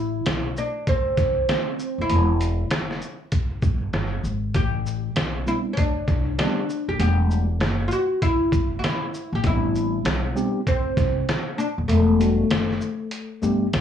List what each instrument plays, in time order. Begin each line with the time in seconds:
Already playing: upright bass A1, oud E4
0.26 upright bass B1, snare, closed hi-hat
0.57 oud D4, shaker
0.87 oud C4, kick, closed hi-hat
1.17 upright bass C2, kick, snare, closed hi-hat, shaker
1.49 oud C4, snare, closed hi-hat
1.79 shaker
1.98 upright bass D#1, oud E4
2.10 upright bass E1, closed hi-hat
2.41 closed hi-hat, shaker
2.71 upright bass F#1, snare, closed hi-hat
2.91 snare
3.02 shaker
3.32 kick, closed hi-hat
3.62 upright bass G1, kick, shaker
3.93 upright bass G1, snare, closed hi-hat
4.24 upright bass G#1, shaker
4.55 upright bass A1, oud G4, kick, closed hi-hat
4.86 shaker
5.16 upright bass B1, snare, closed hi-hat
5.46 tine electric piano G3 B3 C4 D4 E4, oud E4, shaker
5.73 oud C#4, closed hi-hat
5.77 oud D4, kick
6.08 upright bass C2, kick, snare, closed hi-hat, shaker
6.38 tine electric piano G3 B3 C4 D4 G4, oud D4, snare, closed hi-hat
6.70 shaker
6.88 upright bass D#1, oud G4
6.99 upright bass E1, tine electric piano G3 A3 B3 D4 F#5, oud G4, closed hi-hat
7.31 shaker
7.60 upright bass F#1, snare, closed hi-hat
7.88 oud F4, shaker
7.93 oud F#4
8.22 oud E4, kick, closed hi-hat
8.52 upright bass G1, kick, closed hi-hat, shaker
8.79 oud F#4
8.84 oud E4, snare, closed hi-hat
9.14 shaker
9.33 upright bass A1, oud G4
9.43 upright bass A1, tine electric piano G3 B3 C4 D4 E4, oud E4, kick, closed hi-hat
9.75 shaker
10.05 upright bass B1, snare, closed hi-hat
10.35 tine electric piano G3 B3 C4 D4 G4, shaker
10.67 oud C4, kick, closed hi-hat
10.97 upright bass C2, kick, snare, closed hi-hat, shaker
11.29 snare, closed hi-hat
11.58 oud D4, shaker
11.78 upright bass D#1
11.88 upright bass E1, oud A3, closed hi-hat
12.20 tine electric piano G3 A3 B3 D4 F#4, closed hi-hat, shaker
12.50 upright bass F#1, snare, closed hi-hat
12.71 snare
12.81 shaker
13.11 closed hi-hat
13.42 upright bass G1, tine electric piano G3 A3 B3 D4 G4, shaker
13.73 upright bass A1, snare, closed hi-hat